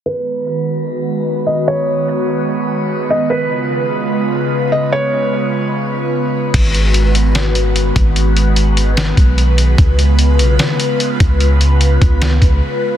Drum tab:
CC |--------|--------|--------|--------|
HH |--------|--------|--------|--------|
SD |--------|--------|--------|--------|
BD |--------|--------|--------|--------|

CC |x-------|--------|--------|--------|
HH |xxxxxxxx|xxxxxxxx|xxxxxxxx|xxxxxx--|
SD |----o---|----o---|----o---|----o---|
BD |o------o|-----o--|o------o|---o-o--|